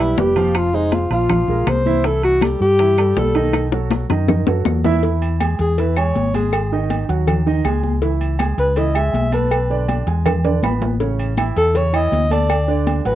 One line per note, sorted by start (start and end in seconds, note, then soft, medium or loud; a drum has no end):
0.00 0.13 B1 loud
0.00 0.14 G3 medium
0.00 0.21 E4 loud
0.00 0.14 G4 medium
0.00 0.15 B4 medium
0.17 1.05 F1 medium
0.17 0.33 G3 medium
0.17 0.33 G4 medium
0.17 0.58 G4 medium
0.17 0.33 B4 medium
0.17 high bongo medium
0.17 low bongo medium
0.17 high conga medium
0.17 low timbale medium
0.36 0.67 F3 loud
0.36 0.67 F4 medium
0.36 0.67 F5 loud
0.36 high bongo soft
0.36 high conga medium
0.36 high timbale medium
0.55 0.76 F4 loud
0.55 high bongo medium
0.55 high timbale loud
0.55 claves medium
0.73 1.04 G#3 medium
0.73 0.96 D#4 loud
0.73 1.04 G#4 medium
0.73 1.05 C5 medium
0.73 high bongo soft
0.73 high conga soft
0.92 1.12 F4 medium
0.92 high bongo medium
0.92 high conga medium
0.92 high timbale medium
1.10 1.45 A#1 loud
1.10 1.27 F3 medium
1.10 1.27 F4 medium
1.10 1.70 F4 loud
1.10 1.27 F5 medium
1.10 high bongo soft
1.10 high conga soft
1.10 high timbale medium
1.29 1.46 F3 medium
1.29 1.46 F4 medium
1.29 1.46 F5 medium
1.29 high bongo medium
1.29 high conga soft
1.29 low conga medium
1.29 high timbale medium
1.29 claves medium
1.48 1.65 A#1 medium
1.48 1.80 G#3 medium
1.48 1.80 G#4 medium
1.48 1.80 A#4 medium
1.48 high bongo soft
1.48 high conga soft
1.48 low conga medium
1.67 2.54 C2 loud
1.67 2.07 C5 loud
1.67 high bongo medium
1.67 low bongo medium
1.67 high conga medium
1.67 high timbale medium
1.67 claves medium
1.86 2.01 E3 medium
1.86 2.01 E4 loud
1.86 2.02 E5 loud
1.86 high conga medium
2.04 2.35 E3 medium
2.04 2.35 E4 medium
2.04 2.24 A4 medium
2.04 2.36 E5 medium
2.04 high bongo medium
2.04 high conga soft
2.04 high timbale medium
2.23 2.45 F#4 loud
2.23 high bongo soft
2.23 high conga soft
2.23 high timbale medium
2.41 2.73 G3 medium
2.41 2.73 G4 medium
2.41 2.61 G4 medium
2.41 2.73 A4 medium
2.41 high bongo medium
2.41 high conga loud
2.41 high timbale loud
2.41 claves medium
2.60 3.12 G2 loud
2.60 3.20 G4 loud
2.60 high bongo soft
2.79 2.94 E3 medium
2.79 2.95 E4 medium
2.79 2.95 E5 medium
2.79 high bongo medium
2.79 high conga soft
2.79 high timbale medium
2.98 3.13 G3 medium
2.98 3.14 G4 medium
2.98 3.14 A4 medium
2.98 high conga soft
2.98 high timbale loud
2.98 claves medium
3.17 4.04 B1 medium
3.17 3.32 G3 medium
3.17 3.32 G4 medium
3.17 3.32 A4 medium
3.17 3.73 A4 medium
3.17 high bongo medium
3.17 low bongo medium
3.17 high conga medium
3.17 low timbale medium
3.35 3.66 D#3 loud
3.35 3.66 D#4 loud
3.35 3.66 D#5 medium
3.35 high bongo soft
3.35 high conga medium
3.35 high timbale medium
3.53 high bongo medium
3.53 high timbale loud
3.53 claves medium
3.72 4.03 F#3 medium
3.72 4.03 F#4 medium
3.72 4.04 A4 medium
3.72 high bongo medium
3.72 high conga soft
3.91 high bongo loud
3.91 high conga loud
3.91 high timbale medium
4.10 4.45 F#2 loud
4.10 4.26 D#3 medium
4.10 4.26 D#4 medium
4.10 4.26 D#5 medium
4.10 low bongo loud
4.10 high timbale medium
4.28 4.44 D#3 medium
4.28 4.44 D#4 medium
4.28 4.44 D#5 medium
4.28 low bongo loud
4.28 high conga soft
4.28 low conga medium
4.28 high timbale medium
4.28 claves medium
4.47 4.65 F#2 medium
4.47 4.78 F#3 medium
4.47 4.78 F#4 medium
4.47 4.78 A4 medium
4.47 low bongo medium
4.47 high conga soft
4.47 high timbale loud
4.65 5.53 E2 loud
4.65 low bongo loud
4.65 high conga medium
4.65 low timbale medium
4.65 claves medium
4.84 5.00 E3 loud
4.84 5.00 E4 loud
4.84 5.01 E5 loud
4.84 low bongo medium
4.84 high conga medium
4.84 low timbale medium
5.03 5.34 E3 medium
5.03 5.34 E4 medium
5.03 5.35 E5 medium
5.03 cowbell loud
5.03 high conga soft
5.22 high conga soft
5.22 low agogo medium
5.40 5.72 G#3 medium
5.40 5.72 G#4 medium
5.40 5.72 G#5 medium
5.40 cowbell medium
5.40 high conga medium
5.40 low agogo loud
5.40 claves medium
5.59 6.11 E2 loud
5.59 5.81 G#4 medium
5.59 cowbell medium
5.78 5.93 E3 medium
5.78 5.94 E4 medium
5.78 5.99 B4 medium
5.78 5.94 E5 medium
5.78 cowbell loud
5.78 high conga soft
5.78 low agogo medium
5.96 6.27 G#3 medium
5.96 6.28 G#4 medium
5.96 6.34 C#5 loud
5.96 6.28 G#5 medium
5.96 high conga soft
5.96 low agogo loud
5.96 claves medium
6.15 7.03 G#1 medium
6.15 cowbell medium
6.15 high conga medium
6.34 6.65 G#3 medium
6.34 6.65 G#4 medium
6.34 6.87 G#4 medium
6.34 6.65 G#5 medium
6.34 cowbell medium
6.34 high conga medium
6.34 low agogo medium
6.53 cowbell loud
6.53 low agogo loud
6.53 claves medium
6.72 7.03 D#3 medium
6.72 7.03 D#4 medium
6.72 7.03 D#5 medium
6.72 high conga soft
6.90 cowbell medium
6.90 high conga medium
6.90 low agogo medium
7.09 7.61 D#2 loud
7.09 7.40 F#3 medium
7.09 7.40 F#4 medium
7.09 7.40 F#5 medium
7.09 cowbell medium
7.09 high conga soft
7.27 cowbell loud
7.27 high conga soft
7.27 low conga medium
7.27 low agogo medium
7.27 claves medium
7.46 7.62 D#3 medium
7.46 7.62 D#4 medium
7.46 7.62 D#5 medium
7.46 high conga soft
7.64 8.52 C#2 medium
7.64 7.96 G#3 medium
7.64 7.96 G#4 medium
7.64 7.96 G#5 medium
7.64 cowbell medium
7.64 high conga medium
7.64 low agogo medium
7.64 claves medium
7.84 high conga medium
8.02 8.33 E3 medium
8.02 8.33 E4 medium
8.02 8.33 E5 medium
8.02 cowbell loud
8.02 high conga soft
8.21 high conga soft
8.21 low agogo medium
8.39 8.71 G#3 medium
8.39 8.71 G#4 medium
8.39 8.71 G#5 medium
8.39 cowbell medium
8.39 high conga loud
8.39 low agogo loud
8.39 claves medium
8.58 9.10 C#2 loud
8.58 8.79 B4 loud
8.58 cowbell medium
8.76 8.92 E3 medium
8.76 8.93 E4 medium
8.76 8.98 D#5 medium
8.76 8.93 E5 medium
8.76 cowbell loud
8.76 high conga soft
8.76 low agogo medium
8.95 9.26 G#3 medium
8.95 9.26 G#4 medium
8.95 9.33 E5 loud
8.95 9.27 G#5 medium
8.95 high conga soft
8.95 low agogo loud
8.95 claves medium
9.13 10.01 B1 loud
9.13 cowbell medium
9.13 high conga medium
9.32 9.63 A3 medium
9.32 9.63 A4 medium
9.32 9.85 B4 medium
9.32 9.64 A5 medium
9.32 cowbell medium
9.32 high conga medium
9.32 low agogo medium
9.51 cowbell loud
9.51 high conga soft
9.51 low agogo loud
9.51 claves medium
9.70 10.01 D3 medium
9.70 10.01 D4 medium
9.70 10.01 D5 medium
9.70 high conga soft
9.88 cowbell medium
9.88 high conga medium
9.88 low agogo loud
10.07 10.59 E2 medium
10.07 10.38 G#3 medium
10.07 10.38 G#4 medium
10.07 10.38 G#5 medium
10.07 cowbell medium
10.07 high conga soft
10.26 cowbell loud
10.26 high conga soft
10.26 low conga medium
10.26 high timbale medium
10.26 low agogo loud
10.26 claves medium
10.44 10.60 D3 medium
10.44 10.60 D4 medium
10.44 10.60 D5 medium
10.44 high conga soft
10.44 low conga medium
10.44 high timbale medium
10.63 11.50 A1 loud
10.63 10.94 B3 medium
10.63 10.94 B4 medium
10.63 10.94 B5 medium
10.63 cowbell medium
10.63 high conga medium
10.63 low timbale medium
10.63 low agogo medium
10.63 claves medium
10.82 high conga medium
10.82 low timbale medium
11.00 11.31 C#3 medium
11.00 11.31 C#4 medium
11.00 11.31 C#5 medium
11.00 cowbell loud
11.00 high conga soft
11.19 high conga soft
11.19 low agogo medium
11.37 11.68 E3 medium
11.37 11.68 E4 medium
11.37 11.69 E5 medium
11.37 cowbell medium
11.37 high conga medium
11.37 low agogo loud
11.37 claves medium
11.56 12.08 E2 loud
11.56 11.78 A4 loud
11.56 cowbell medium
11.74 11.90 C#3 medium
11.74 11.90 C#4 medium
11.74 11.90 C#5 medium
11.74 11.97 C#5 medium
11.74 cowbell loud
11.74 high conga soft
11.74 low agogo medium
11.93 12.24 E3 medium
11.93 12.24 E4 medium
11.93 12.24 C#5 medium
11.93 12.32 D#5 loud
11.93 high conga soft
11.93 low agogo loud
11.93 claves medium
12.12 12.99 D2 medium
12.12 cowbell medium
12.12 high conga medium
12.31 12.62 A3 medium
12.31 12.62 A4 medium
12.31 12.84 D5 medium
12.31 12.62 A5 loud
12.31 cowbell medium
12.31 high conga medium
12.31 low agogo medium
12.49 cowbell loud
12.49 high conga soft
12.49 low agogo loud
12.49 claves medium
12.68 12.99 D3 medium
12.68 12.99 D4 medium
12.68 12.99 D5 loud
12.68 high conga soft
12.87 cowbell medium
12.87 high conga medium
12.87 low agogo medium
13.05 13.15 A1 loud
13.05 13.15 F#3 medium
13.05 13.15 F#4 medium
13.05 13.15 B4 loud
13.05 13.15 F#5 medium
13.05 cowbell medium
13.05 high conga soft